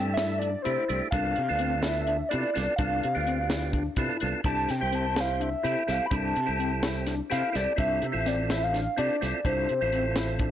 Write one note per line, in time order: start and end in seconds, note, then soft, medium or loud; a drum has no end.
0.00 0.54 G2 medium
0.00 0.50 A3 medium
0.00 0.50 D4 medium
0.00 0.51 E4 medium
0.00 0.51 A4 medium
0.00 0.11 G5 loud
0.14 0.40 E5 loud
0.14 snare loud
0.14 closed hi-hat medium
0.18 0.30 E4 medium
0.39 0.53 D4 medium
0.39 0.64 D5 medium
0.39 closed hi-hat medium
0.62 0.76 C3 medium
0.62 0.84 A3 medium
0.62 0.85 D4 medium
0.62 0.89 E4 medium
0.62 0.85 E4 medium
0.62 0.85 G4 medium
0.62 0.99 C5 medium
0.62 closed hi-hat medium
0.88 1.00 C2 medium
0.88 1.08 A3 medium
0.88 1.08 D4 medium
0.88 1.09 E4 medium
0.88 1.09 G4 medium
0.88 closed hi-hat medium
1.11 1.33 C2 medium
1.11 1.42 B3 medium
1.11 1.36 D4 medium
1.11 1.42 D4 medium
1.11 1.43 F4 medium
1.11 1.43 A4 medium
1.11 1.82 F5 loud
1.11 kick loud
1.11 closed hi-hat medium
1.36 1.47 C3 medium
1.36 closed hi-hat medium
1.49 2.21 D2 medium
1.49 2.17 B3 medium
1.49 2.17 D4 medium
1.49 2.17 F4 medium
1.49 2.17 A4 medium
1.59 1.72 C4 medium
1.59 closed hi-hat medium
1.81 1.96 E4 medium
1.81 2.28 E5 medium
1.81 snare loud
1.81 closed hi-hat medium
2.07 2.20 D4 medium
2.07 closed hi-hat medium
2.29 2.50 B3 medium
2.29 2.51 D4 medium
2.29 2.55 E4 medium
2.29 2.51 F4 medium
2.29 2.51 A4 medium
2.29 2.74 D5 medium
2.29 closed hi-hat medium
2.33 2.43 C3 medium
2.54 2.66 C2 medium
2.54 2.74 B3 medium
2.54 2.74 D4 medium
2.54 2.74 F4 medium
2.54 2.75 A4 medium
2.54 snare soft
2.54 closed hi-hat medium
2.76 3.00 C2 medium
2.76 3.08 B3 medium
2.76 3.08 D4 medium
2.76 3.03 D4 medium
2.76 3.08 F4 medium
2.76 3.08 A4 medium
2.76 4.16 F5 loud
2.76 kick loud
2.76 closed hi-hat medium
3.03 3.14 C3 medium
3.03 closed hi-hat medium
3.14 3.88 D2 medium
3.14 3.83 B3 medium
3.14 3.83 D4 medium
3.14 3.83 F4 medium
3.14 3.83 G4 medium
3.26 3.38 C4 medium
3.26 closed hi-hat medium
3.49 3.62 E4 medium
3.49 snare loud
3.49 closed hi-hat medium
3.73 3.85 D4 medium
3.73 kick medium
3.73 closed hi-hat medium
3.96 4.08 C3 medium
3.96 4.17 B3 medium
3.96 4.17 D4 medium
3.96 4.21 E4 medium
3.96 4.18 F4 medium
3.96 4.18 A4 loud
3.96 kick loud
3.96 closed hi-hat medium
4.20 4.32 C2 medium
4.20 4.41 B3 medium
4.20 4.41 D4 medium
4.20 4.41 F4 medium
4.20 4.41 A4 loud
4.20 closed hi-hat medium
4.44 4.66 C2 medium
4.44 4.74 C4 medium
4.44 4.69 D4 medium
4.44 4.74 E4 medium
4.44 4.75 G4 medium
4.44 4.75 A4 medium
4.44 4.72 A5 loud
4.44 kick loud
4.44 closed hi-hat medium
4.69 4.80 C3 medium
4.69 4.96 G5 medium
4.69 snare soft
4.69 closed hi-hat medium
4.81 5.54 C2 medium
4.81 5.49 C4 medium
4.81 5.50 E4 medium
4.81 5.50 G4 medium
4.81 5.50 C5 medium
4.92 5.04 C4 medium
4.92 5.22 A5 loud
4.92 closed hi-hat medium
5.16 5.28 E4 medium
5.16 5.43 F5 medium
5.16 snare loud
5.16 closed hi-hat medium
5.40 5.52 D4 medium
5.40 5.93 E5 loud
5.40 closed hi-hat medium
5.63 5.74 C3 medium
5.63 5.83 C4 medium
5.63 5.83 E4 medium
5.63 5.88 E4 medium
5.63 5.84 G4 medium
5.63 5.84 A4 medium
5.63 closed hi-hat medium
5.87 5.99 C2 medium
5.87 6.07 C4 medium
5.87 6.07 E4 medium
5.87 6.08 G4 medium
5.87 6.08 A4 medium
5.87 snare soft
5.87 closed hi-hat medium
5.91 6.07 F5 medium
6.06 6.17 B5 medium
6.10 6.32 C2 medium
6.10 6.41 C4 medium
6.10 6.36 D4 medium
6.10 6.41 E4 medium
6.10 6.41 G4 medium
6.10 6.41 A4 medium
6.10 kick loud
6.10 closed hi-hat medium
6.16 7.09 A5 loud
6.36 6.46 C3 medium
6.36 closed hi-hat medium
6.46 7.20 C2 medium
6.46 7.15 C4 medium
6.46 7.15 E4 medium
6.46 7.16 G4 medium
6.46 7.16 A4 medium
6.59 6.71 C4 medium
6.59 closed hi-hat medium
6.83 6.95 E4 medium
6.83 snare loud
6.83 closed hi-hat medium
7.07 7.19 D4 medium
7.07 snare soft
7.07 closed hi-hat medium
7.30 7.42 C3 medium
7.30 7.50 C4 medium
7.30 7.50 E4 medium
7.30 7.55 E4 medium
7.30 7.50 G4 medium
7.30 7.50 A4 medium
7.30 7.57 F5 loud
7.30 snare soft
7.30 closed hi-hat medium
7.52 7.65 C2 medium
7.52 7.73 C4 medium
7.52 7.73 E4 medium
7.52 7.73 G4 medium
7.52 7.73 A4 medium
7.52 7.78 D5 medium
7.52 snare soft
7.52 closed hi-hat medium
7.76 7.99 C2 medium
7.76 8.07 C4 medium
7.76 8.02 D4 medium
7.76 8.07 E4 medium
7.76 8.07 F4 medium
7.76 8.07 A4 medium
7.76 8.29 E5 loud
7.76 kick loud
7.76 closed hi-hat medium
8.02 8.12 C3 medium
8.02 closed hi-hat medium
8.12 8.86 A1 medium
8.12 8.82 C4 medium
8.12 8.82 E4 medium
8.12 8.82 F4 medium
8.12 8.82 A4 medium
8.26 8.38 C4 medium
8.26 8.50 D5 loud
8.26 snare soft
8.26 closed hi-hat medium
8.50 8.61 E4 medium
8.50 8.65 E5 medium
8.50 snare loud
8.50 closed hi-hat medium
8.64 8.98 F5 loud
8.74 8.86 D4 medium
8.74 snare soft
8.74 closed hi-hat medium
8.97 9.08 C3 medium
8.97 9.16 C4 medium
8.97 9.21 D4 medium
8.97 9.17 E4 medium
8.97 9.17 F4 medium
8.97 9.17 A4 medium
8.97 9.47 D5 medium
8.97 closed hi-hat medium
9.21 9.32 C2 medium
9.21 9.40 C4 medium
9.21 9.41 E4 medium
9.21 9.41 F4 medium
9.21 9.41 A4 medium
9.21 snare soft
9.21 closed hi-hat medium
9.45 9.65 C2 medium
9.45 9.74 C4 medium
9.45 9.69 D4 medium
9.45 9.74 E4 medium
9.45 9.74 F4 medium
9.45 9.74 A4 medium
9.45 10.51 C5 medium
9.45 kick loud
9.45 closed hi-hat medium
9.69 9.80 C3 medium
9.69 closed hi-hat medium
9.81 10.51 A1 medium
9.81 10.49 C4 medium
9.81 10.50 E4 medium
9.81 10.50 F4 medium
9.81 10.50 A4 medium
9.93 10.04 C4 medium
9.93 closed hi-hat medium
10.16 10.28 E4 medium
10.16 snare medium
10.16 closed hi-hat medium
10.39 10.51 D4 medium
10.39 kick medium
10.39 closed hi-hat medium